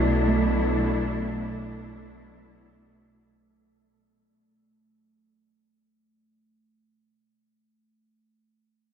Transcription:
Already playing: B1 B2 F#3 A3 D4 E4 A4
0.28 A3

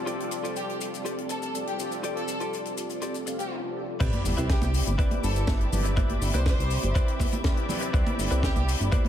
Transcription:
Already playing: G3 F4 A4 D5
0.06 C4 F4 G4 A4 D5, closed hi-hat, shaker
0.20 closed hi-hat
0.31 closed hi-hat, shaker
0.43 F4 G4 A4 D5, closed hi-hat, shaker
0.56 G4, closed hi-hat, shaker
0.69 G4, closed hi-hat
0.81 closed hi-hat, shaker
0.94 closed hi-hat, shaker
1.05 F4 G4 A4 D5, closed hi-hat, shaker
1.18 closed hi-hat
1.29 A4, muted clean electric guitar stroke, closed hi-hat, shaker
1.42 A4, muted clean electric guitar stroke, closed hi-hat, shaker
1.54 C4 F4 G4 A4 D5, closed hi-hat, shaker
1.67 G4, closed hi-hat
1.79 C4 F4 G4 A4 D5, closed hi-hat, shaker
1.92 closed hi-hat, shaker
2.03 C4 F4 G4 A4 D5, closed hi-hat, shaker
2.17 A4, closed hi-hat
2.28 closed hi-hat, shaker
2.40 F4 G4 A4 D5, closed hi-hat, shaker
2.53 closed hi-hat, shaker
2.65 closed hi-hat, shaker
2.77 closed hi-hat, shaker
2.90 closed hi-hat, shaker
3.02 F4 G4 A4 D5, closed hi-hat, shaker
3.14 closed hi-hat, shaker
3.26 C4 F4 G4 A4 F5, muted clean electric guitar stroke, closed hi-hat, shaker
3.39 G4, muted clean electric guitar stroke, closed hi-hat, shaker
3.63 C4 F4 G4 A4 D5
3.99 C2 C4 E4 G4 B4 C5 D5 E5 B5 D6, kick, closed hi-hat, crash, sub drop, shaker
4.13 closed hi-hat, high conga
4.25 G1, open hi-hat, muted conga, shaker
4.37 C2 E4 B4 C5 E5, closed hi-hat, shaker
4.50 G4, kick, snare, closed hi-hat, shaker
4.62 C2 G4, closed hi-hat, muted conga, shaker
4.74 open hi-hat, shaker
4.87 G1, closed hi-hat, high conga, shaker
4.98 E4 B4 C5 D5, kick, closed hi-hat, shaker
5.11 closed hi-hat, muted conga, high conga
5.24 G1 A4, open hi-hat, shaker
5.36 A4, closed hi-hat, shaker
5.47 E4 G4 B4 D5, kick, snare, closed hi-hat, muted conga, shaker
5.61 closed hi-hat
5.72 G1 C4 E4 G4 B4 D5, open hi-hat, low conga, shaker
5.84 muted clean electric guitar stroke, closed hi-hat, shaker
5.96 C4 E4 G4 B4 C5 D5, kick, closed hi-hat, muted conga, shaker
6.09 closed hi-hat, high conga
6.22 G1, open hi-hat, shaker
6.34 C2 E4 B4 C5 D5, closed hi-hat, muted conga, shaker
6.46 C5, kick, snare, closed hi-hat, shaker
6.59 C2, closed hi-hat, shaker
6.70 open hi-hat, shaker
6.83 G1, closed hi-hat, muted conga, high conga, shaker
6.95 E4 B4 C5 D5, kick, closed hi-hat, shaker
7.08 closed hi-hat
7.20 kick, open hi-hat, muted conga, shaker
7.33 closed hi-hat, high conga, shaker
7.44 C4 E4 G4 B4 D5, kick, snare, closed hi-hat, shaker
7.57 closed hi-hat
7.69 C4 E4 G4 B4 D5, open hi-hat, muted conga, low conga, shaker
7.81 muted clean electric guitar stroke, closed hi-hat, shaker
7.93 C2 C4 E4 G4 B4 C5 D5, kick, closed hi-hat, shaker
8.07 closed hi-hat, muted conga, high conga
8.19 G1, open hi-hat, shaker
8.31 C2 E4 B4 C5 D5, closed hi-hat, shaker
8.43 G4, kick, snare, closed hi-hat, shaker
8.56 C2 G4, closed hi-hat, muted conga, shaker
8.68 open hi-hat, shaker
8.80 G1, closed hi-hat, high conga, shaker
8.92 E4 B4 C5 D5, kick, closed hi-hat, muted conga, shaker
9.05 high conga

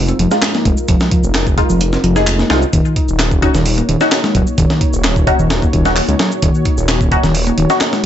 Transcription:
Already playing: F1 G#3 D#4 F4 A#4
0.08 C4, closed hi-hat, shaker
0.19 F1 F3, closed hi-hat
0.31 G#3 D#4 F4, snare, shaker
0.42 snare, clap, closed hi-hat, shaker
0.54 A#3, snare, shaker
0.65 F1 G#3, kick, closed hi-hat
0.77 shaker
0.88 F1 F3, kick, closed hi-hat, shaker
1.00 snare, shaker
1.11 F3, kick, closed hi-hat
1.24 F1, shaker
1.34 snare, clap, closed hi-hat, shaker
1.47 kick, shaker
1.58 G#3 D#4 F4, kick, closed hi-hat
1.70 F1 F3, shaker
1.81 closed hi-hat, shaker
1.93 C4, snare, shaker
2.04 F1 F3, closed hi-hat
2.16 G#3 D#4 G#4, snare, shaker
2.27 clap, closed hi-hat, shaker
2.39 A#3, snare, shaker
2.50 C2 G#3 D#4 F4, snare, closed hi-hat
2.62 shaker
2.73 D#1 D#3 A#3 F#4 C#5, kick, closed hi-hat, shaker
2.85 shaker
2.96 D#4, kick, closed hi-hat
3.08 D#1, shaker
3.19 snare, clap, closed hi-hat, shaker
3.31 kick, shaker
3.42 C#4 D#4 F#4, kick, closed hi-hat
3.54 D#1 D#3, snare, shaker
3.66 open hi-hat, shaker
3.78 A#3, closed hi-hat, shaker
3.89 D#1 D#3, closed hi-hat
4.01 C#4 D#4 F#4, snare, shaker
4.12 snare, clap, closed hi-hat, shaker
4.24 G#3, snare, shaker
4.35 D#1 F#3, kick, closed hi-hat
4.47 shaker
4.58 D#1 D#3, kick, closed hi-hat, shaker
4.70 snare, shaker
4.81 D#4, kick, closed hi-hat
4.93 D#1, shaker
5.04 snare, clap, closed hi-hat, shaker
5.16 kick, shaker
5.27 C#4 D#4 F#4, kick, closed hi-hat
5.39 D#1 D#3, shaker
5.50 snare, closed hi-hat, shaker
5.62 A#3, kick, shaker
5.73 D#1 D#3, kick, closed hi-hat
5.85 C#4 D#4 F#4, snare, shaker
5.96 clap, open hi-hat, shaker
6.08 C#2 G#3, closed hi-hat, shaker
6.19 F#3, snare, closed hi-hat
6.32 shaker
6.42 D#1 D#3, kick, closed hi-hat, shaker
6.55 shaker
6.65 D#4, kick, closed hi-hat
6.78 D#1, shaker
6.88 snare, clap, closed hi-hat, shaker
7.01 kick, shaker
7.12 C#4 D#4 F#4, kick, closed hi-hat
7.24 D#1 D#3, snare, shaker
7.35 open hi-hat, shaker
7.47 A#3, closed hi-hat, shaker
7.58 D#1 D#3, closed hi-hat
7.70 C#4 D#4 F#4, snare, shaker
7.81 snare, clap, closed hi-hat, shaker
7.93 G#3, snare, shaker

